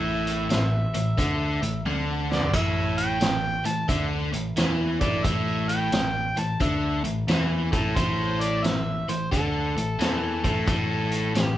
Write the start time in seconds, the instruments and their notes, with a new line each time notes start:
Already playing: picked electric bass A1, overdriven electric guitar A2, harmonica E5
0.27 closed hi-hat
0.49 picked electric bass A1, overdriven electric guitar A2, snare, closed hi-hat
0.94 picked electric bass A1, overdriven electric guitar A2, closed hi-hat
1.18 picked electric bass D2, overdriven electric guitar D3, kick, closed hi-hat
1.62 picked electric bass A1, overdriven electric guitar A2, closed hi-hat
1.85 picked electric bass D2, overdriven electric guitar D3, high tom
2.31 harmonica D5, snare
2.42 floor tom
2.53 picked electric bass A1, overdriven electric guitar A2, harmonica E5, kick, closed hi-hat, splash
2.98 harmonica G5, closed hi-hat
3.20 picked electric bass A1, overdriven electric guitar A2, snare, closed hi-hat
3.65 picked electric bass A1, overdriven electric guitar A2, harmonica A5, closed hi-hat
3.89 picked electric bass D2, overdriven electric guitar D3, harmonica E5, kick, closed hi-hat
4.33 picked electric bass A1, overdriven electric guitar A2, closed hi-hat
4.57 picked electric bass E2, overdriven electric guitar E3, snare, closed hi-hat
5.01 picked electric bass A1, overdriven electric guitar A2, harmonica D5, kick, closed hi-hat
5.24 picked electric bass A1, overdriven electric guitar A2, harmonica E5, kick, closed hi-hat
5.68 harmonica G5, closed hi-hat
5.92 picked electric bass A1, overdriven electric guitar A2, snare, closed hi-hat
6.37 picked electric bass A1, overdriven electric guitar A2, harmonica A5, closed hi-hat
6.60 picked electric bass D2, overdriven electric guitar D3, harmonica E5, kick, closed hi-hat
7.04 picked electric bass A1, overdriven electric guitar A2, closed hi-hat
7.27 picked electric bass E2, overdriven electric guitar E3, snare, closed hi-hat
7.72 picked electric bass A1, overdriven electric guitar A2, harmonica A4, kick, closed hi-hat
7.96 picked electric bass A1, overdriven electric guitar A2, harmonica C5, kick, closed hi-hat
8.41 harmonica D5, closed hi-hat
8.63 picked electric bass A1, overdriven electric guitar A2, harmonica E5, snare, closed hi-hat
9.08 picked electric bass A1, overdriven electric guitar A2, harmonica C5, closed hi-hat
9.31 picked electric bass D2, overdriven electric guitar D3, harmonica A4, kick, closed hi-hat
9.76 picked electric bass A1, overdriven electric guitar A2, closed hi-hat
9.99 picked electric bass E2, overdriven electric guitar E3, snare, closed hi-hat
10.44 picked electric bass A1, overdriven electric guitar A2, kick, closed hi-hat
10.67 picked electric bass A1, overdriven electric guitar A2, kick, closed hi-hat
11.12 closed hi-hat
11.35 picked electric bass A1, overdriven electric guitar A2, snare, closed hi-hat
11.43 harmonica G4